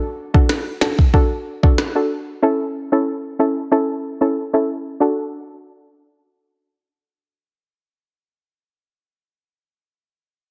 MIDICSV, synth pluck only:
0, 0, Header, 1, 2, 480
1, 0, Start_track
1, 0, Key_signature, 2, "major"
1, 0, Tempo, 645161
1, 1806, Time_signature, 4, 2, 24, 8
1, 7818, End_track
2, 0, Start_track
2, 0, Title_t, "Synth pluck"
2, 0, Program_c, 0, 84
2, 0, Note_on_c, 0, 62, 88
2, 0, Note_on_c, 0, 66, 84
2, 0, Note_on_c, 0, 69, 97
2, 222, Note_off_c, 0, 62, 0
2, 223, Note_off_c, 0, 66, 0
2, 224, Note_off_c, 0, 69, 0
2, 252, Note_on_c, 0, 62, 80
2, 255, Note_on_c, 0, 66, 73
2, 257, Note_on_c, 0, 69, 83
2, 578, Note_off_c, 0, 62, 0
2, 580, Note_off_c, 0, 66, 0
2, 581, Note_off_c, 0, 69, 0
2, 605, Note_on_c, 0, 62, 75
2, 608, Note_on_c, 0, 66, 68
2, 610, Note_on_c, 0, 69, 81
2, 827, Note_off_c, 0, 62, 0
2, 829, Note_off_c, 0, 66, 0
2, 830, Note_off_c, 0, 69, 0
2, 845, Note_on_c, 0, 62, 92
2, 847, Note_on_c, 0, 66, 79
2, 849, Note_on_c, 0, 69, 102
2, 1182, Note_off_c, 0, 62, 0
2, 1183, Note_off_c, 0, 66, 0
2, 1184, Note_off_c, 0, 69, 0
2, 1213, Note_on_c, 0, 62, 79
2, 1215, Note_on_c, 0, 66, 69
2, 1217, Note_on_c, 0, 69, 83
2, 1314, Note_off_c, 0, 62, 0
2, 1315, Note_off_c, 0, 66, 0
2, 1316, Note_off_c, 0, 69, 0
2, 1453, Note_on_c, 0, 62, 79
2, 1455, Note_on_c, 0, 66, 69
2, 1457, Note_on_c, 0, 69, 85
2, 1554, Note_off_c, 0, 62, 0
2, 1555, Note_off_c, 0, 66, 0
2, 1556, Note_off_c, 0, 69, 0
2, 1804, Note_on_c, 0, 61, 91
2, 1806, Note_on_c, 0, 64, 86
2, 1808, Note_on_c, 0, 69, 104
2, 2142, Note_off_c, 0, 61, 0
2, 2143, Note_off_c, 0, 64, 0
2, 2144, Note_off_c, 0, 69, 0
2, 2172, Note_on_c, 0, 61, 76
2, 2175, Note_on_c, 0, 64, 69
2, 2177, Note_on_c, 0, 69, 86
2, 2499, Note_off_c, 0, 61, 0
2, 2500, Note_off_c, 0, 64, 0
2, 2501, Note_off_c, 0, 69, 0
2, 2524, Note_on_c, 0, 61, 76
2, 2526, Note_on_c, 0, 64, 67
2, 2528, Note_on_c, 0, 69, 82
2, 2747, Note_off_c, 0, 61, 0
2, 2748, Note_off_c, 0, 64, 0
2, 2749, Note_off_c, 0, 69, 0
2, 2764, Note_on_c, 0, 61, 88
2, 2766, Note_on_c, 0, 64, 81
2, 2768, Note_on_c, 0, 69, 100
2, 3102, Note_off_c, 0, 61, 0
2, 3103, Note_off_c, 0, 64, 0
2, 3104, Note_off_c, 0, 69, 0
2, 3132, Note_on_c, 0, 61, 75
2, 3133, Note_on_c, 0, 64, 70
2, 3136, Note_on_c, 0, 69, 88
2, 3233, Note_off_c, 0, 61, 0
2, 3234, Note_off_c, 0, 64, 0
2, 3235, Note_off_c, 0, 69, 0
2, 3373, Note_on_c, 0, 61, 77
2, 3375, Note_on_c, 0, 64, 73
2, 3377, Note_on_c, 0, 69, 85
2, 3474, Note_off_c, 0, 61, 0
2, 3475, Note_off_c, 0, 64, 0
2, 3476, Note_off_c, 0, 69, 0
2, 3722, Note_on_c, 0, 62, 82
2, 3726, Note_on_c, 0, 66, 80
2, 3730, Note_on_c, 0, 69, 93
2, 6730, Note_off_c, 0, 62, 0
2, 6732, Note_off_c, 0, 66, 0
2, 6734, Note_off_c, 0, 69, 0
2, 7818, End_track
0, 0, End_of_file